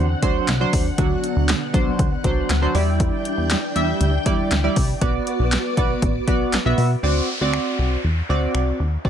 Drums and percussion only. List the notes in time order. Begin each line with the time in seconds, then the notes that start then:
0.23 kick, closed hi-hat
0.48 snare, clap, closed hi-hat
0.73 kick, open hi-hat
0.98 kick, closed hi-hat
1.24 closed hi-hat
1.49 snare, clap, closed hi-hat
1.74 kick, closed hi-hat
1.99 kick, closed hi-hat
2.24 kick, closed hi-hat
2.50 snare, clap, closed hi-hat
2.75 open hi-hat
3.00 kick, closed hi-hat
3.25 closed hi-hat
3.50 snare, clap, closed hi-hat
3.76 closed hi-hat
4.01 closed hi-hat
4.26 kick, closed hi-hat
4.51 snare, clap, closed hi-hat
4.76 kick, open hi-hat
5.01 kick, closed hi-hat
5.27 closed hi-hat
5.52 snare, clap, closed hi-hat
5.77 kick, closed hi-hat
6.02 kick, closed hi-hat
6.28 kick, closed hi-hat
6.53 snare, clap, closed hi-hat
6.78 open hi-hat
7.54 finger snap
8.55 finger snap
9.05 kick